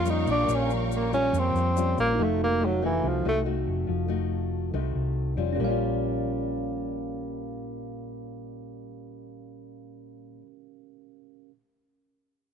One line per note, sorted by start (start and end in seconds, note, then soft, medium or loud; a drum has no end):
0.00 0.24 F2 medium
0.00 0.45 F3 medium
0.00 2.13 A#3 medium
0.00 0.12 F4 medium
0.00 2.13 G4 medium
0.00 2.15 A#4 medium
0.00 2.14 F5 medium
0.00 2.15 F5 medium
0.00 2.15 G5 medium
0.00 2.15 C#6 medium
0.05 0.33 G3 medium
0.05 0.33 C#4 medium
0.05 0.33 F4 medium
0.05 shaker medium
0.10 0.29 D#4 medium
0.27 0.47 A#1 medium
0.27 0.57 D4 medium
0.27 shaker soft
0.47 1.29 A#1 medium
0.47 1.30 A#2 medium
0.47 1.08 G3 medium
0.47 1.08 C#4 medium
0.47 1.08 F4 medium
0.47 shaker medium
0.55 0.73 C#4 medium
0.70 shaker soft
0.74 0.90 F3 soft
0.92 shaker medium
0.96 1.13 A#3 medium
1.12 1.72 G3 medium
1.12 1.40 C#4 medium
1.12 1.73 F4 medium
1.12 shaker soft
1.33 1.53 F2 medium
1.33 2.16 F3 medium
1.33 shaker medium
1.39 1.99 C4 medium
1.54 1.94 F2 medium
1.54 shaker soft
1.76 2.17 G3 medium
1.76 2.17 C#4 soft
1.76 2.17 F4 medium
1.76 shaker medium
1.98 2.17 A#1 medium
1.98 2.25 A#3 medium
1.98 shaker soft
2.15 2.99 F1 loud
2.15 3.01 F3 medium
2.15 2.46 A3 medium
2.15 5.53 D#4 soft
2.15 2.46 D#4 medium
2.15 5.54 F#4 soft
2.19 2.42 A3 medium
2.19 2.46 F#4 medium
2.19 5.55 A4 soft
2.19 5.56 F5 medium
2.43 2.67 A#3 medium
2.60 2.73 A3 soft
2.60 2.73 D#4 medium
2.60 2.74 F#4 medium
2.65 2.84 F#3 medium
2.82 3.10 E3 medium
2.82 3.21 A3 medium
2.82 3.21 D#4 medium
2.82 3.22 F#4 medium
3.04 3.23 C2 medium
3.04 3.86 C3 medium
3.08 3.27 F3 medium
3.25 3.64 C2 medium
3.25 3.43 A3 medium
3.25 3.40 A3 medium
3.25 3.43 D#4 medium
3.25 3.43 F#4 medium
3.45 4.06 A3 soft
3.45 4.06 D#4 soft
3.45 4.06 F#4 medium
3.67 3.87 F1 medium
3.87 4.69 F1 medium
3.87 4.71 F3 medium
4.08 4.69 A3 medium
4.08 4.70 D#4 medium
4.08 4.70 F#4 medium
4.73 4.93 C2 medium
4.73 5.54 C3 medium
4.73 5.34 A3 medium
4.73 5.34 D#4 medium
4.73 5.34 F#4 medium
4.95 5.35 C2 medium
5.37 5.57 F1 medium
5.37 5.59 G3 medium
5.37 5.64 C#4 medium
5.37 5.69 F4 medium
5.53 10.41 A#2 medium
5.53 10.35 C#4 medium
5.57 10.41 A#1 medium
5.57 10.46 G3 medium
5.57 10.39 G4 medium
5.57 10.43 A#4 medium
5.64 10.51 C#4 medium
5.64 10.47 F5 medium
5.70 10.55 F4 medium